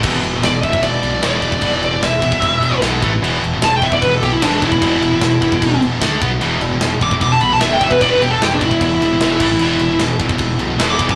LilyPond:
<<
  \new Staff \with { instrumentName = "Lead electric guitar" } { \time 4/4 \key a \dorian \tempo 4 = 151 r4 d''8 e''8 d''4 d''4~ | d''8 d''8 e''2 r4 | r4 a''16 g''16 e''16 d''16 b'16 a'16 g'16 e'16 d'8 e'8~ | e'2~ e'8 r4. |
r4. d'''16 r16 d'''16 a''16 b''16 a''16 e''16 g''16 e''16 b'16 | d''16 b'16 g'16 a'16 g'16 d'16 e'8 e'2~ | e'4 r2 r16 d'''16 r16 d'''16 | }
  \new Staff \with { instrumentName = "Distorted electric guitar" } { \clef bass \time 4/4 \key a \dorian <e, b, e>8 <e, b,>16 <e, b,>16 <e, b,>8 <e, b,>16 <e, b,>16 <e, b,>8 <e, b,>16 <e, b,>16 <e, b, e>8 <e, b, e>16 <e, b,>16 | <e, b, e>8 <e, b,>16 <e, b,>16 <e, b,>8 <e, b,>16 <e, b,>16 <e, b,>8 <e, b,>16 <e, b,>16 <e, b, e>8 <a, e a>16 <a, e>16 | <e, b, e>8 <e, b,>16 <e, b,>16 <e, b,>8 <e, b,>16 <e, b,>16 <e, b,>8 <e, b,>16 <e, b,>16 <e, b, e>8 <e, b, e>16 <e, b,>16 | <e, b, e>8 <e, b,>16 <e, b,>16 <e, b,>8 <e, b,>16 <e, b,>16 <e, b,>8 <e, b,>16 <e, b,>16 <d a d'>8 <b, fis b>16 <b, fis>16 |
<e, b, e>8 <e, b,>16 <e, b,>16 <e, b,>8 <e, b,>16 <e, b,>16 <e, b,>8 <e, b,>16 <e, b,>16 <e, b, e>8 <e, b, e>16 <e, b,>16 | <e, b, e>8 <e, b,>16 <e, b,>16 <e, b,>8 <e, b,>16 <e, b,>16 <e, b,>8 <e, b,>16 <e, b,>16 <e, b, e>8 <a, e a>16 <a, e>16 | <e, b, e>8 <e, b,>16 <e, b,>16 <e, b,>8 <e, b,>16 <e, b,>16 <e, b,>8 <e, b,>16 <e, b,>16 <e, b, e>8 <e, b, e>16 <e, b,>16 | }
  \new Staff \with { instrumentName = "Distorted electric guitar" } { \clef bass \time 4/4 \key a \dorian <e, b, e>8 <e, b,>16 <e, b,>16 <e, b,>8 <e, b,>16 <e, b,>16 <e, b,>8 <e, b,>16 <e, b,>16 <e, b, e>8 <e, b, e>16 <e, b,>16 | <e, b, e>8 <e, b,>16 <e, b,>16 <e, b,>8 <e, b,>16 <e, b,>16 <e, b,>8 <e, b,>16 <e, b,>16 <e, b, e>8 <a, e a>16 <a, e>16 | <e, b, e>8 <e, b,>16 <e, b,>16 <e, b,>8 <e, b,>16 <e, b,>16 <e, b,>8 <e, b,>16 <e, b,>16 <e, b, e>8 <e, b, e>16 <e, b,>16 | <e, b, e>8 <e, b,>16 <e, b,>16 <e, b,>8 <e, b,>16 <e, b,>16 <e, b,>8 <e, b,>16 <e, b,>16 <d a d'>8 <b, fis b>16 <b, fis>16 |
<e, b, e>8 <e, b,>16 <e, b,>16 <e, b,>8 <e, b,>16 <e, b,>16 <e, b,>8 <e, b,>16 <e, b,>16 <e, b, e>8 <e, b, e>16 <e, b,>16 | <e, b, e>8 <e, b,>16 <e, b,>16 <e, b,>8 <e, b,>16 <e, b,>16 <e, b,>8 <e, b,>16 <e, b,>16 <e, b, e>8 <a, e a>16 <a, e>16 | <e, b, e>8 <e, b,>16 <e, b,>16 <e, b,>8 <e, b,>16 <e, b,>16 <e, b,>8 <e, b,>16 <e, b,>16 <e, b, e>8 <e, b, e>16 <e, b,>16 | }
  \new Staff \with { instrumentName = "Overdriven electric guitar" } { \clef bass \time 4/4 \key a \dorian <e, b, e>4. <e, b, e>4. <e, b, e>4 | <e, b, e>4. <e, b, e>4. <e, b, e>8 r8 | <e, b, e>4. <e, b, e>4. <e, b, e>4 | <e, b, e>4. <e, b, e>4. r4 |
<e, b, e>4. <e, b, e>4. <e, b, e>4 | <e, b, e>4. <e, b, e>4. <e, b, e>8 r8 | <e, b, e>4. <e, b, e>4. <e, b, e>4 | }
  \new Staff \with { instrumentName = "Fingered electric bass" } { \clef bass \time 4/4 \key a \dorian e,,8 e,,8 e,,8 e,,8 e,,8 b,,8 e,,8 e,,8 | e,,8 e,,8 e,,8 e,,8 e,,8 e,,8 b,,8 a,,8 | e,,8 e,,8 e,,8 e,,8 e,,8 b,,8 e,,8 e,,8 | e,,8 e,,8 e,,8 e,,8 e,,8 e,,8 d,8 b,,8 |
e,,8 e,,8 e,,8 e,,8 e,,8 b,,8 e,,8 e,,8 | e,,8 e,,8 e,,8 e,,8 e,,8 e,,8 e,,8 a,,8 | e,,8 e,,8 e,,8 e,,8 e,,8 b,,8 e,,8 e,,8 | }
  \new DrumStaff \with { instrumentName = "Drums" } \drummode { \time 4/4 <cymc bd>8 cymc8 <cymc sn>8 <cymc bd>16 bd16 <cymc bd>8 cymc8 <cymc sn>8 <cymc bd>16 bd16 | <cymc bd>8 cymc8 <cymc sn>8 <cymc bd>16 bd16 <cymc bd>8 cymc8 <cymc sn>8 <cymc bd>8 | cymc8 cymc8 <cymc sn>8 <cymc bd>16 bd16 <cymc bd>8 cymc8 <cymc sn>8 <cymc bd>16 bd16 | <cymc bd>8 cymc8 <cymc sn>8 <cymc bd>16 bd16 <cymc bd>8 cymc8 <cymc sn>8 <cymc bd>8 |
cymc8 cymc8 <cymc sn>8 <cymc bd>16 bd16 <cymc bd>8 cymc8 <cymc sn>8 <cymc bd>16 bd16 | <cymc bd>8 cymc8 <cymc sn>8 <cymc bd>16 bd16 <cymc bd>8 cymc8 <cymc sn>8 <cymc bd>8 | cymc8 cymc8 <cymc sn>8 <cymc bd>16 bd16 <cymc bd>8 cymc8 <cymc sn>8 <cymc bd>16 bd16 | }
>>